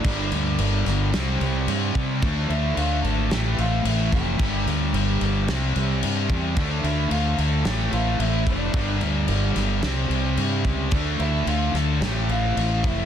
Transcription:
<<
  \new Staff \with { instrumentName = "Lead electric guitar" } { \time 4/4 \key d \minor \tempo 4 = 110 <d' d''>8 r2. r8 | r8 <e' e''>8 <f' f''>8 <a' a''>8 <g' g''>8 <f' f''>8 <e' e''>8 <g' g''>8~ | <g' g''>8 r2. r8 | r8 <e' e''>8 <f' f''>8 <a' a''>8 <g' g''>8 <f' f''>8 <e' e''>8 <d' d''>8~ |
<d' d''>8 r2. r8 | r8 <e' e''>8 <f' f''>8 <a' a''>8 <g' g''>8 <f' f''>4 <e' e''>8 | }
  \new Staff \with { instrumentName = "Harmonium" } { \time 4/4 \key d \minor << { <bes bes'>2 <c' c''>2 | <a a'>1 | <bes bes'>2 <c' c''>2 | <a a'>1 |
<bes bes'>2 <c' c''>2 | <d' d''>2 <c' c''>2 | } \\ { g'1 | f'2 e'2 | g'1 | f'2 e'2 |
g'2 g'2 | a'1 | } >> }
  \new Staff \with { instrumentName = "Harmonium" } { \clef bass \time 4/4 \key d \minor << { g1 | f2 e2 | g2 g2 | f2 e2 |
g1 | a2 a2 | } \\ { d2 e2 | d2 c2 | d2 e2 | d2 c2 |
d2 e2 | f2 c2 | } >> }
  \new Staff \with { instrumentName = "Distorted electric guitar" } { \clef bass \time 4/4 \key d \minor <g, d g>2 <c g c'>2 | <d a d'>2 <a, e a>2 | <g, d g>2 <c g c'>2 | <d a d'>2 <a, e a>2 |
<g, d g>2 <c g c'>2 | <d a d'>2 <a, e a>2 | }
  \new Staff \with { instrumentName = "Distorted electric guitar" } { \clef bass \time 4/4 \key d \minor <g, d g>2 <c g c'>2 | <d a d'>2 <a, e a>2 | <g, d g>2 <c g c'>2 | <d a d'>2 <a, e a>2 |
<g, d g>2 <c g c'>2 | <d a d'>2 <a, e a>2 | }
  \new Staff \with { instrumentName = "Fingered electric bass" } { \clef bass \time 4/4 \key d \minor g,,8 d,8 g,,8 g,,8 c,8 c,8 g,8 c8 | d,8 d,8 d,8 gis,,8 a,,8 a,,8 a,,8 f,,8 | g,,8 d,8 g,,8 g,,8 c,8 c,8 g,8 e,8 | d,8 d,8 d,8 d,8 a,,8 a,,8 a,,8 f,,8 |
g,,8 d,8 g,,8 g,,8 c,8 c,8 g,8 cis,8 | d,8 d,8 d,8 d,8 a,,8 a,,8 a,,8 f,,8 | }
  \new DrumStaff \with { instrumentName = "Drums" } \drummode { \time 4/4 <cymc bd>8 cymc8 cymc8 <cymc sn>8 <cymc sn>8 cymc8 cymc8 <cymc bd>8 | <cymc bd>8 cymc8 cymc8 cymc8 <cymc sn>8 cymc8 cymc8 <cymc bd>8 | <cymc bd>8 cymc8 cymc8 cymc8 <cymc sn>8 cymc8 cymc8 <cymc bd>8 | <cymc bd>8 cymc8 cymc8 cymc8 <cymc sn>8 cymc8 cymc8 <cymc bd>8 |
<cymc bd>8 cymc8 cymc8 <cymc sn>8 <cymc sn>8 cymc8 cymc8 <cymc bd>8 | <cymc bd>8 cymc8 cymc8 <cymc sn>8 <cymc sn>8 cymc8 cymc8 <cymc bd>8 | }
>>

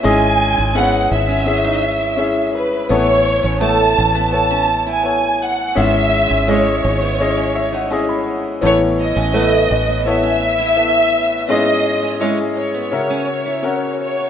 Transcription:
<<
  \new Staff \with { instrumentName = "Violin section" } { \time 4/4 \key cis \minor \tempo 4 = 84 gis''4 fis''8 e''2 b'8 | cis''4 a''4 a''8. gis''8. fis''8 | e''4 cis''2~ cis''8 r8 | cis''8 dis''4. e''2 |
dis''4 cis''8 cis''2 cis''8 | }
  \new Staff \with { instrumentName = "Upright piano" } { \time 4/4 \key cis \minor <cis' e' gis' dis''>4 <cis' e' gis' b' cis''>4 <cis' e' gis' e''>4 <cis' e' gis' e''>4 | <b e' a' cis''>4 <b e' a' cis''>4 <b e' a' cis''>4 <b e' a' cis''>4 | <cis' e' gis' e''>4 <cis' e' gis' dis''>4 <cis' e' gis' dis''>4 <cis' e' gis' dis''>4 | <b e' a' cis''>4 <b e' a' b'>4 <b e' a' cis''>4 <b e' a' e''>4 |
<cis' e' gis' dis''>4 <cis' e' gis' dis''>4 <cis' fis' ais' e''>4 <cis' fis' ais' fis''>4 | }
  \new Staff \with { instrumentName = "Upright piano" } { \clef bass \time 4/4 \key cis \minor <gis, gis>4. r2 r8 | <a, e>4. r2 r8 | <gis, gis>4. r4 e''16 fis''16 gis''16 b''8. | <a, e>4. r2 r8 |
<gis, gis>4. r8 cis4. r8 | }
  \new Staff \with { instrumentName = "Steel-string acoustic guitar" } { \time 4/4 \key cis \minor cis'16 r8 dis'16 b16 r8 cis'16 r16 dis'16 r16 e'16 r4 | b16 r8 cis'16 a16 r8 b16 r16 cis'16 r16 e'16 r4 | b16 r8 cis'16 gis16 r8 b16 r16 cis'16 r16 dis'16 r4 | b16 r8 cis'16 a16 r8 b16 r16 cis'16 r16 e'16 r4 |
b16 r8 cis'16 gis16 r8 b16 r16 cis'16 r16 e'16 r4 | }
  \new Staff \with { instrumentName = "Fingered electric bass" } { \clef bass \time 4/4 \key cis \minor gis,,8. gis,,8. gis,,2~ gis,,8 | a,,8. a,,8. a,,2~ a,,8 | gis,,8. gis,,8. gis,,2~ gis,,8 | a,,8. a,,8. a,,2~ a,,8 |
r1 | }
>>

